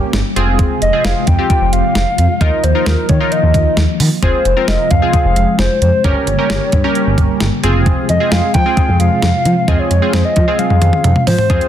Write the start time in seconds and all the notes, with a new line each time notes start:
Already playing: C#3 G3 A#3 C#4 G4 C#5
0.13 G1, snare, closed hi-hat
0.36 F1 C3 F3 G#3 C4 F4 G#4, closed hi-hat
0.59 kick, closed hi-hat
0.82 F1 D#5, closed hi-hat
0.93 C4 F4 G#4
1.04 F1 F5, snare, closed hi-hat
1.27 F2 G5, kick, closed hi-hat
1.39 C4 F4 G4
1.50 kick, closed hi-hat
1.61 F1
1.73 F1 F5, closed hi-hat
1.95 F1, snare, closed hi-hat
2.18 F2, closed hi-hat
2.41 D#2 D#3 A#3 D#4 F4 A#4 D#5, kick, closed hi-hat
2.64 D#2 C5, closed hi-hat
2.75 D#4 F4 A#4
2.86 D#2 A#4, snare, closed hi-hat
3.09 D#3 C#5, kick, closed hi-hat
3.20 D#4 F4 A#4
3.32 D#5, closed hi-hat
3.43 D#2
3.54 D#2, kick, closed hi-hat
3.77 D#2, snare, closed hi-hat
4.00 D#3, open hi-hat
4.22 F1 C3 G#3 C4 F4 G#4 C5, kick, closed hi-hat
4.45 F1, closed hi-hat
4.57 C4 F4 A#4
4.68 F1 D#5, snare, closed hi-hat
4.91 F2 F5, kick, closed hi-hat
5.02 C4 F4 G#4
5.13 F5, kick, closed hi-hat
5.25 F1
5.36 F1, closed hi-hat
5.59 F1 C5, snare, closed hi-hat
5.82 F2 C5, closed hi-hat
6.04 G1 C#3 G3 A#3 C#4 G4 A#4 C#5, kick, closed hi-hat
6.27 G1, closed hi-hat
6.39 C#4 G4 A#4
6.50 G1, snare, closed hi-hat
6.72 G2, kick, closed hi-hat
6.84 C#4 G4 A#4
6.95 closed hi-hat
7.07 G1
7.18 G1, kick, closed hi-hat
7.40 G1, snare, closed hi-hat
7.63 F1 C3 F3 G#3 C4 F4 G#4, closed hi-hat
7.86 kick, closed hi-hat
8.09 F2 D#5, closed hi-hat
8.20 C4 F4 G#4
8.32 F2 F5, snare, closed hi-hat
8.54 F3 G5, kick, closed hi-hat
8.66 C4 F4 G#4
8.77 kick, closed hi-hat
8.88 F2
9.00 F2 F5, closed hi-hat
9.22 F2, snare, closed hi-hat
9.45 F3, closed hi-hat
9.68 F2 C4 F4 G#4 D#5, kick, closed hi-hat
9.79 C#5
9.91 F2, closed hi-hat
10.02 C4 F4 G#4
10.13 F2 C5, snare, closed hi-hat
10.25 D#5
10.36 F3, kick, closed hi-hat
10.48 C4 F4 G#4
10.59 F5, closed hi-hat, high tom
10.70 F2, high tom
10.82 F2, closed hi-hat, mid tom
10.93 mid tom
11.04 F2, closed hi-hat, mid tom
11.16 mid tom
11.27 F3 C5, floor tom, open hi-hat
11.39 floor tom
11.50 F2 C4 F4 G#4, kick, closed hi-hat
11.61 closed hi-hat